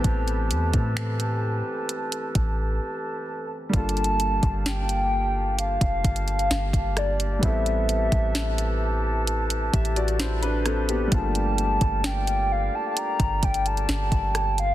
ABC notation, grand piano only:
X:1
M:4/4
L:1/16
Q:1/4=65
K:G
V:1 name="Grand piano"
z16 | z16 | z8 z2 [Ge] [Fd] [Ec] [DB] [CA] [B,G]- | [B,G] z12 z3 |]
V:2 name="Grand piano"
[E,A,B,CG]12- [E,A,B,CG]2 z2 | [G,_B,D=FA]16 | [G,B,CEA]16 | [G,A,_B,D=F]16 |]